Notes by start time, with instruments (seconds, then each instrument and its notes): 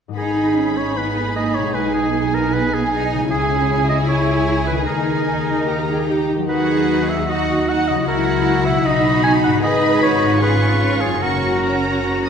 0.08 harp G#2 G#3 D#4
0.14 double bass section G#1, cello section D#4, viola section D#4, oboe G#4, violin section G#4 B5, harp B4
0.57 cello section C#4
0.77 oboe C#5
0.97 cello section B3, oboe B4
1.36 cello section A#3, oboe D#5
1.55 harp B2, oboe C#5
1.62 harp G#3
1.67 harp D#4
1.71 double bass section B1, cello section G#3, harp G#4, oboe B4, violin section G#5
1.94 oboe G#4
2.14 cello section B3
2.34 oboe A#4
2.53 oboe B4
2.73 oboe G#4
2.92 cello section D#4
3.13 harp C#3
3.18 harp G#3
3.22 harp E4
3.27 cello section C#4, viola section E4, harp G#4, oboe G#4
3.31 double bass section C#2, violin section G#4
3.89 oboe D#5
4.08 cello section E4, oboe C#5
4.67 harp D#3, oboe B4
4.74 harp G#3
4.78 harp D#4
4.83 double bass section D#2, viola section D#4, cello section D#4, harp G#4, oboe A#4, violin section G#5
5.27 viola section D#4
5.50 harp D#3
5.55 harp A#3
5.59 harp D#4
5.64 harp G4
5.68 violin section G4 A#5
5.89 viola section G#4
6.09 viola section G4
6.32 harp D#3
6.37 harp F#3
6.41 harp D#4
6.45 viola section D#4, harp F#4, oboe B4
6.50 double bass section D#2, violin section F#4 F#5, cello section G#4
7.08 oboe E5
7.29 viola section D#4, violin section F#4 F#5, cello section F#4, oboe D#5
7.68 viola section D#4, violin section F#4 F#5, oboe F#5
7.88 harp C#3, oboe D#5
7.94 harp F#3
7.98 harp E4
8.03 harp F#4
8.07 double bass section C#2, viola section E4, cello section E4, violin section F#4 F#5, oboe A#4
8.65 harp B2, oboe E5
8.72 harp B3
8.77 harp D#4
8.81 double bass section B1, cello section D#4, harp F#4, violin section F#4, oboe D#5
8.85 viola section D#4, violin section B5
9.24 oboe G#5
9.44 harp G#2, oboe F#5
9.50 harp B3
9.55 harp D#4
9.59 double bass section G#1, viola section D#4, harp G#4, violin section G#4 B5, cello section B4, oboe D#5
10.02 violin section F#4, oboe C#5
10.23 harp G#2
10.28 harp C#4
10.32 harp F4
10.36 harp G#4
10.40 viola section C#4, violin section F4 C#6, cello section G#4, oboe B4
10.81 cello section F4
11.01 oboe G#4
11.05 harp F#2
11.09 harp C#4
11.14 harp F#4
11.18 double bass section F#1, viola section C#4, cello section F#4, harp C#5, violin section C#6
11.22 violin section F#4, oboe A#4
11.64 violin section A#5
12.26 violin section D#6